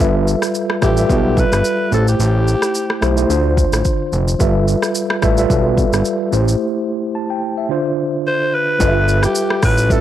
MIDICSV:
0, 0, Header, 1, 5, 480
1, 0, Start_track
1, 0, Time_signature, 4, 2, 24, 8
1, 0, Tempo, 550459
1, 8726, End_track
2, 0, Start_track
2, 0, Title_t, "Alto saxophone"
2, 0, Program_c, 0, 65
2, 731, Note_on_c, 0, 67, 93
2, 1213, Note_on_c, 0, 71, 102
2, 1226, Note_off_c, 0, 67, 0
2, 1685, Note_off_c, 0, 71, 0
2, 1689, Note_on_c, 0, 69, 87
2, 1806, Note_off_c, 0, 69, 0
2, 1819, Note_on_c, 0, 67, 94
2, 2739, Note_off_c, 0, 67, 0
2, 7211, Note_on_c, 0, 72, 110
2, 7451, Note_on_c, 0, 71, 106
2, 7464, Note_off_c, 0, 72, 0
2, 8056, Note_off_c, 0, 71, 0
2, 8064, Note_on_c, 0, 67, 90
2, 8381, Note_off_c, 0, 67, 0
2, 8410, Note_on_c, 0, 71, 95
2, 8649, Note_on_c, 0, 69, 102
2, 8662, Note_off_c, 0, 71, 0
2, 8726, Note_off_c, 0, 69, 0
2, 8726, End_track
3, 0, Start_track
3, 0, Title_t, "Tine electric piano"
3, 0, Program_c, 1, 4
3, 0, Control_c, 1, 64, 127
3, 0, Note_on_c, 1, 55, 90
3, 0, Note_on_c, 1, 65, 79
3, 0, Note_on_c, 1, 69, 81
3, 2, Note_on_c, 1, 71, 83
3, 7, Control_c, 1, 64, 0
3, 8, Note_on_c, 1, 76, 96
3, 145, Control_c, 1, 64, 127
3, 677, Note_off_c, 1, 55, 0
3, 680, Note_off_c, 1, 65, 0
3, 682, Note_off_c, 1, 69, 0
3, 685, Note_off_c, 1, 71, 0
3, 688, Note_off_c, 1, 76, 0
3, 706, Note_on_c, 1, 55, 73
3, 711, Note_on_c, 1, 65, 71
3, 716, Note_on_c, 1, 69, 65
3, 722, Note_on_c, 1, 71, 69
3, 728, Note_on_c, 1, 76, 86
3, 828, Note_off_c, 1, 55, 0
3, 835, Note_off_c, 1, 65, 0
3, 839, Note_off_c, 1, 69, 0
3, 839, Note_on_c, 1, 55, 72
3, 845, Note_off_c, 1, 71, 0
3, 845, Note_on_c, 1, 65, 67
3, 847, Note_off_c, 1, 76, 0
3, 850, Note_on_c, 1, 69, 67
3, 855, Note_on_c, 1, 71, 68
3, 861, Note_on_c, 1, 76, 78
3, 1667, Note_on_c, 1, 57, 74
3, 1672, Note_off_c, 1, 55, 0
3, 1674, Note_on_c, 1, 64, 70
3, 1675, Note_off_c, 1, 65, 0
3, 1677, Note_off_c, 1, 69, 0
3, 1680, Note_off_c, 1, 71, 0
3, 1682, Note_on_c, 1, 67, 72
3, 1683, Note_off_c, 1, 76, 0
3, 1687, Control_c, 1, 64, 0
3, 1689, Note_on_c, 1, 72, 87
3, 1866, Control_c, 1, 64, 127
3, 2585, Note_off_c, 1, 57, 0
3, 2589, Note_off_c, 1, 64, 0
3, 2593, Note_off_c, 1, 67, 0
3, 2596, Note_off_c, 1, 72, 0
3, 2626, Note_on_c, 1, 57, 90
3, 2633, Note_on_c, 1, 64, 86
3, 2639, Note_on_c, 1, 67, 80
3, 2647, Note_on_c, 1, 72, 98
3, 2748, Note_off_c, 1, 57, 0
3, 2756, Note_off_c, 1, 64, 0
3, 2758, Note_on_c, 1, 57, 87
3, 2763, Note_off_c, 1, 67, 0
3, 2766, Note_on_c, 1, 64, 82
3, 2767, Note_off_c, 1, 72, 0
3, 2773, Note_on_c, 1, 67, 84
3, 2780, Note_on_c, 1, 72, 99
3, 2865, Note_on_c, 1, 50, 90
3, 2872, Note_off_c, 1, 57, 0
3, 2873, Note_on_c, 1, 62, 83
3, 2876, Note_off_c, 1, 64, 0
3, 2876, Note_off_c, 1, 72, 0
3, 2879, Note_off_c, 1, 67, 0
3, 2879, Note_on_c, 1, 65, 84
3, 2887, Note_on_c, 1, 72, 102
3, 2888, Control_c, 1, 64, 0
3, 3038, Control_c, 1, 64, 127
3, 3785, Note_off_c, 1, 50, 0
3, 3788, Note_off_c, 1, 62, 0
3, 3791, Note_off_c, 1, 65, 0
3, 3795, Note_off_c, 1, 72, 0
3, 3827, Note_on_c, 1, 55, 93
3, 3833, Note_on_c, 1, 65, 84
3, 3839, Note_on_c, 1, 69, 86
3, 3843, Note_on_c, 1, 71, 84
3, 3847, Control_c, 1, 64, 0
3, 3849, Note_on_c, 1, 76, 101
3, 3977, Control_c, 1, 64, 127
3, 4517, Note_off_c, 1, 55, 0
3, 4520, Note_off_c, 1, 65, 0
3, 4523, Note_off_c, 1, 69, 0
3, 4525, Note_off_c, 1, 71, 0
3, 4528, Note_off_c, 1, 76, 0
3, 4547, Note_on_c, 1, 55, 92
3, 4552, Note_on_c, 1, 65, 82
3, 4559, Note_on_c, 1, 69, 81
3, 4564, Note_on_c, 1, 71, 85
3, 4568, Note_on_c, 1, 76, 99
3, 4668, Note_off_c, 1, 55, 0
3, 4674, Note_off_c, 1, 65, 0
3, 4678, Note_on_c, 1, 55, 88
3, 4679, Note_off_c, 1, 69, 0
3, 4684, Note_on_c, 1, 65, 83
3, 4685, Note_off_c, 1, 71, 0
3, 4687, Note_off_c, 1, 76, 0
3, 4689, Note_on_c, 1, 69, 83
3, 4696, Note_on_c, 1, 71, 81
3, 4702, Note_on_c, 1, 76, 95
3, 5507, Note_on_c, 1, 57, 95
3, 5512, Note_off_c, 1, 55, 0
3, 5514, Note_on_c, 1, 64, 86
3, 5515, Note_off_c, 1, 65, 0
3, 5517, Note_off_c, 1, 69, 0
3, 5520, Note_off_c, 1, 71, 0
3, 5522, Note_on_c, 1, 67, 87
3, 5523, Note_off_c, 1, 76, 0
3, 5528, Note_on_c, 1, 72, 102
3, 5529, Control_c, 1, 64, 0
3, 5657, Control_c, 1, 64, 127
3, 6236, Note_on_c, 1, 81, 68
3, 6362, Note_off_c, 1, 81, 0
3, 6368, Note_on_c, 1, 79, 68
3, 6425, Note_off_c, 1, 57, 0
3, 6429, Note_off_c, 1, 64, 0
3, 6433, Note_off_c, 1, 67, 0
3, 6436, Note_off_c, 1, 72, 0
3, 6596, Note_off_c, 1, 79, 0
3, 6608, Note_on_c, 1, 76, 66
3, 6705, Note_on_c, 1, 50, 88
3, 6712, Note_on_c, 1, 62, 83
3, 6719, Note_on_c, 1, 65, 80
3, 6726, Note_on_c, 1, 72, 100
3, 6727, Control_c, 1, 64, 0
3, 6836, Note_off_c, 1, 76, 0
3, 6856, Control_c, 1, 64, 127
3, 7624, Note_off_c, 1, 50, 0
3, 7628, Note_off_c, 1, 62, 0
3, 7631, Note_off_c, 1, 65, 0
3, 7635, Note_off_c, 1, 72, 0
3, 7663, Note_on_c, 1, 55, 80
3, 7670, Note_on_c, 1, 65, 72
3, 7675, Note_on_c, 1, 69, 72
3, 7681, Note_on_c, 1, 71, 71
3, 7686, Note_on_c, 1, 75, 70
3, 7687, Control_c, 1, 64, 0
3, 7742, Note_on_c, 1, 76, 86
3, 7744, Note_off_c, 1, 75, 0
3, 7855, Control_c, 1, 64, 127
3, 8583, Note_off_c, 1, 55, 0
3, 8587, Note_off_c, 1, 65, 0
3, 8589, Note_off_c, 1, 69, 0
3, 8592, Note_off_c, 1, 71, 0
3, 8623, Note_off_c, 1, 76, 0
3, 8627, Note_on_c, 1, 55, 78
3, 8632, Note_on_c, 1, 65, 70
3, 8637, Note_on_c, 1, 69, 67
3, 8642, Note_on_c, 1, 71, 71
3, 8649, Note_on_c, 1, 76, 82
3, 8726, Note_off_c, 1, 55, 0
3, 8726, Note_off_c, 1, 65, 0
3, 8726, Note_off_c, 1, 69, 0
3, 8726, Note_off_c, 1, 71, 0
3, 8726, Note_off_c, 1, 76, 0
3, 8726, End_track
4, 0, Start_track
4, 0, Title_t, "Analog synth bass"
4, 0, Program_c, 2, 38
4, 0, Note_on_c, 2, 31, 108
4, 310, Note_off_c, 2, 31, 0
4, 720, Note_on_c, 2, 33, 85
4, 920, Note_off_c, 2, 33, 0
4, 955, Note_on_c, 2, 35, 99
4, 1268, Note_off_c, 2, 35, 0
4, 1329, Note_on_c, 2, 31, 93
4, 1420, Note_off_c, 2, 31, 0
4, 1676, Note_on_c, 2, 33, 105
4, 1878, Note_off_c, 2, 33, 0
4, 1915, Note_on_c, 2, 33, 114
4, 2228, Note_off_c, 2, 33, 0
4, 2636, Note_on_c, 2, 35, 100
4, 2838, Note_off_c, 2, 35, 0
4, 2875, Note_on_c, 2, 38, 101
4, 3188, Note_off_c, 2, 38, 0
4, 3246, Note_on_c, 2, 33, 88
4, 3338, Note_off_c, 2, 33, 0
4, 3597, Note_on_c, 2, 29, 96
4, 3799, Note_off_c, 2, 29, 0
4, 3837, Note_on_c, 2, 31, 108
4, 4150, Note_off_c, 2, 31, 0
4, 4558, Note_on_c, 2, 33, 94
4, 4759, Note_off_c, 2, 33, 0
4, 4796, Note_on_c, 2, 35, 93
4, 5109, Note_off_c, 2, 35, 0
4, 5170, Note_on_c, 2, 31, 91
4, 5260, Note_off_c, 2, 31, 0
4, 5517, Note_on_c, 2, 33, 93
4, 5719, Note_off_c, 2, 33, 0
4, 7677, Note_on_c, 2, 31, 106
4, 8081, Note_off_c, 2, 31, 0
4, 8398, Note_on_c, 2, 33, 100
4, 8726, Note_off_c, 2, 33, 0
4, 8726, End_track
5, 0, Start_track
5, 0, Title_t, "Drums"
5, 0, Note_on_c, 9, 36, 111
5, 0, Note_on_c, 9, 82, 79
5, 84, Note_off_c, 9, 36, 0
5, 84, Note_off_c, 9, 82, 0
5, 241, Note_on_c, 9, 82, 52
5, 328, Note_off_c, 9, 82, 0
5, 367, Note_on_c, 9, 37, 83
5, 370, Note_on_c, 9, 82, 72
5, 454, Note_off_c, 9, 37, 0
5, 457, Note_off_c, 9, 82, 0
5, 476, Note_on_c, 9, 82, 86
5, 563, Note_off_c, 9, 82, 0
5, 608, Note_on_c, 9, 37, 89
5, 695, Note_off_c, 9, 37, 0
5, 716, Note_on_c, 9, 37, 85
5, 717, Note_on_c, 9, 82, 51
5, 719, Note_on_c, 9, 36, 90
5, 803, Note_off_c, 9, 37, 0
5, 804, Note_off_c, 9, 82, 0
5, 806, Note_off_c, 9, 36, 0
5, 847, Note_on_c, 9, 82, 67
5, 934, Note_off_c, 9, 82, 0
5, 955, Note_on_c, 9, 36, 93
5, 959, Note_on_c, 9, 82, 60
5, 1042, Note_off_c, 9, 36, 0
5, 1046, Note_off_c, 9, 82, 0
5, 1195, Note_on_c, 9, 36, 92
5, 1199, Note_on_c, 9, 82, 58
5, 1282, Note_off_c, 9, 36, 0
5, 1286, Note_off_c, 9, 82, 0
5, 1330, Note_on_c, 9, 82, 78
5, 1336, Note_on_c, 9, 37, 93
5, 1417, Note_off_c, 9, 82, 0
5, 1423, Note_off_c, 9, 37, 0
5, 1435, Note_on_c, 9, 82, 71
5, 1522, Note_off_c, 9, 82, 0
5, 1676, Note_on_c, 9, 82, 43
5, 1763, Note_off_c, 9, 82, 0
5, 1811, Note_on_c, 9, 82, 67
5, 1899, Note_off_c, 9, 82, 0
5, 1917, Note_on_c, 9, 82, 77
5, 2004, Note_off_c, 9, 82, 0
5, 2160, Note_on_c, 9, 82, 52
5, 2247, Note_off_c, 9, 82, 0
5, 2286, Note_on_c, 9, 37, 85
5, 2289, Note_on_c, 9, 82, 73
5, 2373, Note_off_c, 9, 37, 0
5, 2376, Note_off_c, 9, 82, 0
5, 2395, Note_on_c, 9, 82, 85
5, 2483, Note_off_c, 9, 82, 0
5, 2528, Note_on_c, 9, 37, 91
5, 2616, Note_off_c, 9, 37, 0
5, 2636, Note_on_c, 9, 37, 87
5, 2637, Note_on_c, 9, 82, 49
5, 2724, Note_off_c, 9, 37, 0
5, 2724, Note_off_c, 9, 82, 0
5, 2767, Note_on_c, 9, 82, 70
5, 2854, Note_off_c, 9, 82, 0
5, 2879, Note_on_c, 9, 82, 62
5, 2966, Note_off_c, 9, 82, 0
5, 3115, Note_on_c, 9, 36, 86
5, 3119, Note_on_c, 9, 82, 59
5, 3202, Note_off_c, 9, 36, 0
5, 3206, Note_off_c, 9, 82, 0
5, 3250, Note_on_c, 9, 82, 76
5, 3256, Note_on_c, 9, 37, 86
5, 3337, Note_off_c, 9, 82, 0
5, 3343, Note_off_c, 9, 37, 0
5, 3355, Note_on_c, 9, 82, 71
5, 3358, Note_on_c, 9, 36, 91
5, 3442, Note_off_c, 9, 82, 0
5, 3445, Note_off_c, 9, 36, 0
5, 3597, Note_on_c, 9, 82, 42
5, 3684, Note_off_c, 9, 82, 0
5, 3732, Note_on_c, 9, 82, 64
5, 3819, Note_off_c, 9, 82, 0
5, 3837, Note_on_c, 9, 82, 77
5, 3838, Note_on_c, 9, 36, 106
5, 3924, Note_off_c, 9, 82, 0
5, 3925, Note_off_c, 9, 36, 0
5, 4080, Note_on_c, 9, 82, 53
5, 4167, Note_off_c, 9, 82, 0
5, 4207, Note_on_c, 9, 37, 90
5, 4210, Note_on_c, 9, 82, 71
5, 4294, Note_off_c, 9, 37, 0
5, 4298, Note_off_c, 9, 82, 0
5, 4315, Note_on_c, 9, 82, 88
5, 4403, Note_off_c, 9, 82, 0
5, 4448, Note_on_c, 9, 37, 95
5, 4535, Note_off_c, 9, 37, 0
5, 4555, Note_on_c, 9, 37, 85
5, 4556, Note_on_c, 9, 82, 48
5, 4559, Note_on_c, 9, 36, 89
5, 4642, Note_off_c, 9, 37, 0
5, 4643, Note_off_c, 9, 82, 0
5, 4646, Note_off_c, 9, 36, 0
5, 4686, Note_on_c, 9, 82, 71
5, 4774, Note_off_c, 9, 82, 0
5, 4796, Note_on_c, 9, 36, 94
5, 4799, Note_on_c, 9, 82, 60
5, 4883, Note_off_c, 9, 36, 0
5, 4887, Note_off_c, 9, 82, 0
5, 5036, Note_on_c, 9, 36, 86
5, 5040, Note_on_c, 9, 82, 54
5, 5123, Note_off_c, 9, 36, 0
5, 5127, Note_off_c, 9, 82, 0
5, 5171, Note_on_c, 9, 82, 78
5, 5178, Note_on_c, 9, 37, 90
5, 5258, Note_off_c, 9, 82, 0
5, 5265, Note_off_c, 9, 37, 0
5, 5277, Note_on_c, 9, 82, 71
5, 5364, Note_off_c, 9, 82, 0
5, 5518, Note_on_c, 9, 82, 44
5, 5606, Note_off_c, 9, 82, 0
5, 5653, Note_on_c, 9, 82, 67
5, 5740, Note_off_c, 9, 82, 0
5, 7677, Note_on_c, 9, 36, 116
5, 7677, Note_on_c, 9, 82, 80
5, 7764, Note_off_c, 9, 36, 0
5, 7764, Note_off_c, 9, 82, 0
5, 7920, Note_on_c, 9, 82, 53
5, 8007, Note_off_c, 9, 82, 0
5, 8047, Note_on_c, 9, 37, 88
5, 8050, Note_on_c, 9, 82, 79
5, 8134, Note_off_c, 9, 37, 0
5, 8137, Note_off_c, 9, 82, 0
5, 8155, Note_on_c, 9, 82, 87
5, 8242, Note_off_c, 9, 82, 0
5, 8288, Note_on_c, 9, 37, 93
5, 8375, Note_off_c, 9, 37, 0
5, 8394, Note_on_c, 9, 37, 94
5, 8395, Note_on_c, 9, 46, 73
5, 8395, Note_on_c, 9, 82, 51
5, 8398, Note_on_c, 9, 36, 98
5, 8482, Note_off_c, 9, 37, 0
5, 8482, Note_off_c, 9, 46, 0
5, 8482, Note_off_c, 9, 82, 0
5, 8485, Note_off_c, 9, 36, 0
5, 8526, Note_on_c, 9, 82, 75
5, 8613, Note_off_c, 9, 82, 0
5, 8634, Note_on_c, 9, 36, 92
5, 8637, Note_on_c, 9, 82, 65
5, 8721, Note_off_c, 9, 36, 0
5, 8724, Note_off_c, 9, 82, 0
5, 8726, End_track
0, 0, End_of_file